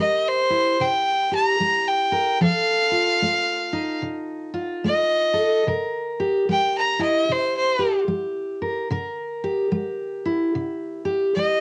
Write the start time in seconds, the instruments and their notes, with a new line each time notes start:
Already playing: steel-string acoustic guitar G4 A#4
0.00 steel-string acoustic guitar G3, fiddle D#5
0.27 fiddle C5
0.50 steel-string acoustic guitar E4
0.80 steel-string acoustic guitar C3, fiddle G5
1.32 steel-string acoustic guitar G4, fiddle A#5
1.60 steel-string acoustic guitar G3
1.88 fiddle G5
2.12 steel-string acoustic guitar A#4
2.41 steel-string acoustic guitar F3 A4, fiddle F5
2.92 steel-string acoustic guitar F4
3.22 steel-string acoustic guitar A3
3.73 steel-string acoustic guitar D#4
4.02 steel-string acoustic guitar C3
4.54 steel-string acoustic guitar F4
4.84 steel-string acoustic guitar A3, fiddle D#5
5.34 steel-string acoustic guitar A4
5.67 steel-string acoustic guitar C3 A#4
6.20 steel-string acoustic guitar G4
6.49 steel-string acoustic guitar G3, fiddle G5
6.78 fiddle A#5
6.99 steel-string acoustic guitar E4, fiddle D#5
7.29 steel-string acoustic guitar C3, fiddle C5
7.57 fiddle C5
7.79 steel-string acoustic guitar G4
8.08 steel-string acoustic guitar G3
8.62 steel-string acoustic guitar A#4
8.90 steel-string acoustic guitar C3 A#4
9.44 steel-string acoustic guitar G4
9.72 steel-string acoustic guitar G3
10.26 steel-string acoustic guitar E4
10.55 steel-string acoustic guitar C3
11.05 steel-string acoustic guitar G4
11.35 steel-string acoustic guitar G3, fiddle D#5